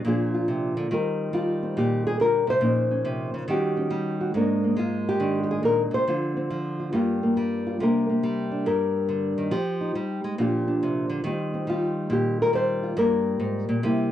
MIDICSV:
0, 0, Header, 1, 2, 480
1, 0, Start_track
1, 0, Key_signature, -3, "major"
1, 0, Tempo, 431034
1, 997, Time_signature, 4, 2, 24, 8
1, 15722, End_track
2, 0, Start_track
2, 0, Title_t, "Nylon-string guitar"
2, 0, Program_c, 0, 24
2, 51, Note_on_c, 0, 46, 82
2, 67, Note_on_c, 0, 53, 66
2, 74, Note_on_c, 0, 62, 70
2, 80, Note_on_c, 0, 65, 68
2, 86, Note_on_c, 0, 68, 76
2, 369, Note_off_c, 0, 65, 0
2, 382, Note_on_c, 0, 65, 61
2, 534, Note_on_c, 0, 48, 58
2, 847, Note_off_c, 0, 48, 0
2, 855, Note_on_c, 0, 50, 59
2, 984, Note_off_c, 0, 46, 0
2, 990, Note_off_c, 0, 65, 0
2, 995, Note_off_c, 0, 62, 0
2, 1002, Note_off_c, 0, 68, 0
2, 1006, Note_off_c, 0, 50, 0
2, 1011, Note_on_c, 0, 51, 70
2, 1014, Note_off_c, 0, 53, 0
2, 1018, Note_on_c, 0, 55, 50
2, 1027, Note_on_c, 0, 60, 47
2, 1032, Note_on_c, 0, 65, 48
2, 1043, Note_on_c, 0, 70, 49
2, 1468, Note_off_c, 0, 55, 0
2, 1481, Note_on_c, 0, 55, 59
2, 1483, Note_off_c, 0, 65, 0
2, 1496, Note_on_c, 0, 65, 78
2, 1799, Note_off_c, 0, 60, 0
2, 1812, Note_on_c, 0, 60, 44
2, 1969, Note_on_c, 0, 46, 62
2, 1979, Note_off_c, 0, 70, 0
2, 1985, Note_on_c, 0, 67, 86
2, 2292, Note_off_c, 0, 67, 0
2, 2301, Note_on_c, 0, 68, 93
2, 2441, Note_off_c, 0, 51, 0
2, 2446, Note_off_c, 0, 65, 0
2, 2446, Note_on_c, 0, 50, 59
2, 2448, Note_off_c, 0, 68, 0
2, 2462, Note_on_c, 0, 70, 92
2, 2747, Note_off_c, 0, 50, 0
2, 2752, Note_on_c, 0, 48, 54
2, 2770, Note_off_c, 0, 70, 0
2, 2784, Note_on_c, 0, 72, 98
2, 2891, Note_off_c, 0, 46, 0
2, 2899, Note_off_c, 0, 55, 0
2, 2904, Note_off_c, 0, 60, 0
2, 2904, Note_on_c, 0, 46, 75
2, 2911, Note_on_c, 0, 53, 46
2, 2913, Note_off_c, 0, 48, 0
2, 2921, Note_on_c, 0, 61, 46
2, 2934, Note_on_c, 0, 63, 51
2, 3228, Note_off_c, 0, 61, 0
2, 3241, Note_on_c, 0, 61, 44
2, 3392, Note_on_c, 0, 48, 59
2, 3714, Note_off_c, 0, 48, 0
2, 3719, Note_on_c, 0, 49, 60
2, 3851, Note_off_c, 0, 46, 0
2, 3859, Note_off_c, 0, 61, 0
2, 3867, Note_off_c, 0, 49, 0
2, 3872, Note_on_c, 0, 51, 73
2, 3873, Note_off_c, 0, 53, 0
2, 3882, Note_on_c, 0, 55, 64
2, 3889, Note_off_c, 0, 72, 0
2, 3892, Note_on_c, 0, 61, 63
2, 3895, Note_off_c, 0, 63, 0
2, 3899, Note_on_c, 0, 66, 65
2, 3905, Note_on_c, 0, 67, 75
2, 4182, Note_off_c, 0, 61, 0
2, 4195, Note_on_c, 0, 61, 55
2, 4334, Note_off_c, 0, 55, 0
2, 4348, Note_on_c, 0, 55, 62
2, 4672, Note_off_c, 0, 66, 0
2, 4685, Note_on_c, 0, 66, 51
2, 4812, Note_off_c, 0, 55, 0
2, 4814, Note_off_c, 0, 51, 0
2, 4816, Note_off_c, 0, 61, 0
2, 4821, Note_off_c, 0, 66, 0
2, 4834, Note_on_c, 0, 44, 71
2, 4843, Note_on_c, 0, 56, 53
2, 4847, Note_on_c, 0, 58, 55
2, 4850, Note_off_c, 0, 67, 0
2, 4862, Note_on_c, 0, 62, 50
2, 4867, Note_on_c, 0, 70, 52
2, 5153, Note_off_c, 0, 58, 0
2, 5166, Note_on_c, 0, 58, 44
2, 5293, Note_off_c, 0, 56, 0
2, 5306, Note_on_c, 0, 56, 62
2, 5328, Note_off_c, 0, 62, 0
2, 5335, Note_on_c, 0, 65, 86
2, 5514, Note_off_c, 0, 65, 0
2, 5652, Note_off_c, 0, 70, 0
2, 5665, Note_on_c, 0, 67, 98
2, 5788, Note_on_c, 0, 51, 69
2, 5795, Note_on_c, 0, 62, 55
2, 6038, Note_off_c, 0, 67, 0
2, 6052, Note_on_c, 0, 67, 65
2, 6124, Note_off_c, 0, 67, 0
2, 6134, Note_on_c, 0, 68, 81
2, 6262, Note_off_c, 0, 44, 0
2, 6267, Note_on_c, 0, 46, 58
2, 6284, Note_off_c, 0, 68, 0
2, 6293, Note_on_c, 0, 70, 94
2, 6471, Note_off_c, 0, 70, 0
2, 6577, Note_off_c, 0, 51, 0
2, 6582, Note_on_c, 0, 48, 54
2, 6592, Note_off_c, 0, 46, 0
2, 6617, Note_on_c, 0, 72, 97
2, 6731, Note_off_c, 0, 56, 0
2, 6748, Note_off_c, 0, 48, 0
2, 6754, Note_off_c, 0, 62, 0
2, 6759, Note_off_c, 0, 58, 0
2, 6765, Note_on_c, 0, 50, 72
2, 6772, Note_on_c, 0, 53, 49
2, 6780, Note_on_c, 0, 60, 51
2, 6787, Note_on_c, 0, 65, 52
2, 7077, Note_off_c, 0, 60, 0
2, 7090, Note_on_c, 0, 60, 46
2, 7230, Note_off_c, 0, 53, 0
2, 7243, Note_on_c, 0, 53, 58
2, 7553, Note_off_c, 0, 65, 0
2, 7567, Note_on_c, 0, 65, 46
2, 7700, Note_off_c, 0, 50, 0
2, 7701, Note_off_c, 0, 65, 0
2, 7702, Note_off_c, 0, 60, 0
2, 7712, Note_on_c, 0, 43, 72
2, 7717, Note_off_c, 0, 53, 0
2, 7721, Note_on_c, 0, 55, 66
2, 7725, Note_off_c, 0, 72, 0
2, 7728, Note_on_c, 0, 58, 64
2, 7735, Note_on_c, 0, 65, 65
2, 8039, Note_off_c, 0, 58, 0
2, 8052, Note_on_c, 0, 58, 55
2, 8201, Note_off_c, 0, 55, 0
2, 8206, Note_on_c, 0, 55, 53
2, 8525, Note_off_c, 0, 65, 0
2, 8538, Note_on_c, 0, 65, 51
2, 8666, Note_off_c, 0, 65, 0
2, 8673, Note_off_c, 0, 43, 0
2, 8682, Note_off_c, 0, 58, 0
2, 8689, Note_on_c, 0, 48, 75
2, 8694, Note_off_c, 0, 55, 0
2, 8699, Note_on_c, 0, 55, 59
2, 8704, Note_on_c, 0, 58, 62
2, 8713, Note_on_c, 0, 62, 58
2, 8722, Note_on_c, 0, 70, 67
2, 9000, Note_off_c, 0, 58, 0
2, 9013, Note_on_c, 0, 58, 54
2, 9165, Note_off_c, 0, 55, 0
2, 9170, Note_on_c, 0, 55, 60
2, 9469, Note_off_c, 0, 62, 0
2, 9482, Note_on_c, 0, 62, 58
2, 9639, Note_off_c, 0, 70, 0
2, 9641, Note_off_c, 0, 48, 0
2, 9645, Note_on_c, 0, 43, 66
2, 9652, Note_on_c, 0, 70, 63
2, 10118, Note_on_c, 0, 50, 54
2, 10437, Note_off_c, 0, 50, 0
2, 10442, Note_on_c, 0, 51, 55
2, 10583, Note_off_c, 0, 70, 0
2, 10589, Note_off_c, 0, 55, 0
2, 10593, Note_on_c, 0, 53, 80
2, 10597, Note_off_c, 0, 51, 0
2, 10597, Note_off_c, 0, 62, 0
2, 10599, Note_off_c, 0, 43, 0
2, 10602, Note_off_c, 0, 58, 0
2, 10603, Note_on_c, 0, 67, 71
2, 10922, Note_on_c, 0, 63, 57
2, 11079, Note_off_c, 0, 53, 0
2, 11083, Note_on_c, 0, 55, 65
2, 11399, Note_off_c, 0, 55, 0
2, 11405, Note_on_c, 0, 56, 57
2, 11538, Note_off_c, 0, 63, 0
2, 11558, Note_off_c, 0, 56, 0
2, 11561, Note_on_c, 0, 46, 79
2, 11568, Note_on_c, 0, 53, 64
2, 11577, Note_on_c, 0, 62, 61
2, 11585, Note_on_c, 0, 65, 64
2, 11591, Note_off_c, 0, 67, 0
2, 11595, Note_on_c, 0, 67, 71
2, 11875, Note_off_c, 0, 62, 0
2, 11889, Note_on_c, 0, 62, 59
2, 12057, Note_on_c, 0, 48, 61
2, 12351, Note_off_c, 0, 48, 0
2, 12355, Note_on_c, 0, 50, 57
2, 12498, Note_off_c, 0, 46, 0
2, 12502, Note_off_c, 0, 62, 0
2, 12510, Note_off_c, 0, 50, 0
2, 12514, Note_on_c, 0, 51, 77
2, 12518, Note_off_c, 0, 53, 0
2, 12523, Note_on_c, 0, 55, 49
2, 12537, Note_on_c, 0, 60, 50
2, 12538, Note_off_c, 0, 65, 0
2, 12542, Note_on_c, 0, 65, 49
2, 12548, Note_off_c, 0, 67, 0
2, 12552, Note_on_c, 0, 67, 52
2, 12835, Note_off_c, 0, 60, 0
2, 12849, Note_on_c, 0, 60, 48
2, 12992, Note_off_c, 0, 55, 0
2, 12996, Note_on_c, 0, 55, 61
2, 13008, Note_off_c, 0, 65, 0
2, 13023, Note_on_c, 0, 65, 86
2, 13470, Note_on_c, 0, 46, 72
2, 13502, Note_off_c, 0, 67, 0
2, 13506, Note_on_c, 0, 67, 86
2, 13811, Note_off_c, 0, 67, 0
2, 13830, Note_on_c, 0, 70, 100
2, 13949, Note_off_c, 0, 55, 0
2, 13953, Note_on_c, 0, 55, 57
2, 13969, Note_off_c, 0, 65, 0
2, 13971, Note_off_c, 0, 70, 0
2, 13979, Note_on_c, 0, 72, 94
2, 14290, Note_on_c, 0, 65, 43
2, 14413, Note_off_c, 0, 46, 0
2, 14415, Note_off_c, 0, 51, 0
2, 14422, Note_off_c, 0, 60, 0
2, 14422, Note_off_c, 0, 65, 0
2, 14440, Note_on_c, 0, 43, 80
2, 14441, Note_off_c, 0, 55, 0
2, 14445, Note_on_c, 0, 55, 55
2, 14446, Note_off_c, 0, 72, 0
2, 14454, Note_on_c, 0, 58, 50
2, 14459, Note_on_c, 0, 65, 51
2, 14461, Note_on_c, 0, 70, 95
2, 14913, Note_off_c, 0, 43, 0
2, 14917, Note_on_c, 0, 44, 62
2, 15236, Note_off_c, 0, 44, 0
2, 15241, Note_on_c, 0, 46, 59
2, 15380, Note_off_c, 0, 55, 0
2, 15388, Note_off_c, 0, 65, 0
2, 15397, Note_off_c, 0, 46, 0
2, 15403, Note_off_c, 0, 58, 0
2, 15403, Note_on_c, 0, 48, 79
2, 15409, Note_on_c, 0, 55, 51
2, 15418, Note_on_c, 0, 58, 52
2, 15429, Note_on_c, 0, 64, 53
2, 15722, Note_off_c, 0, 48, 0
2, 15722, Note_off_c, 0, 55, 0
2, 15722, Note_off_c, 0, 58, 0
2, 15722, Note_off_c, 0, 64, 0
2, 15722, Note_off_c, 0, 70, 0
2, 15722, End_track
0, 0, End_of_file